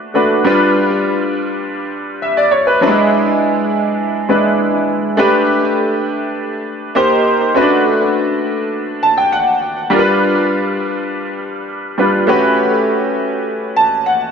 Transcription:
Already playing: A3 D4 F#4 B4
0.14 A3 D4 F#4 B4
0.44 G3 D4 F4 B4
2.22 E5
2.37 D5
2.51 C#5
2.67 B4
2.81 F#3 D4 E4 B4
2.87 G#3
4.29 G#3 D4 E4 B4
5.17 A3 D4 G4 B4
6.95 A#3 D#4 G4 C5
7.54 A3 C#4 F#4 B4
7.61 D4
9.03 A5
9.18 G5
9.32 F#5
9.90 G3 D4 F4 A#4
9.99 B4
11.98 G3 D4 F4 B4
12.27 A3 C#4 F#4 G4 B4
13.77 A5
14.06 F#5

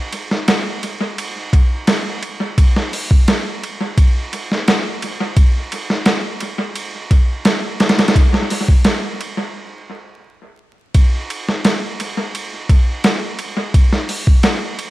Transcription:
0.13 ride
0.31 snare
0.48 snare, ride
0.83 ride
1.18 ride
1.53 kick, ride
1.87 snare, ride
2.23 ride
2.58 kick, ride
2.76 snare
2.93 open hi-hat
3.11 kick
3.28 snare, ride
3.64 ride
3.98 kick, ride
4.33 ride
4.52 snare
4.68 snare, ride
5.02 ride
5.37 kick, ride
5.72 ride
5.90 snare
6.06 snare, ride
6.40 ride
6.76 ride
7.11 kick, ride
7.45 snare, ride
7.80 snare, ride
7.89 snare, ride
7.99 snare, ride
8.08 snare, ride
8.16 kick, ride
8.34 snare
8.50 open hi-hat
8.68 kick
8.85 snare, ride
9.21 ride
10.94 kick, ride
11.30 ride
11.48 snare
11.65 snare, ride
12.00 ride
12.35 ride
12.69 kick, ride
13.04 snare, ride
13.39 ride
13.74 kick, ride
13.93 snare
14.09 open hi-hat
14.27 kick
14.43 snare, ride
14.79 ride

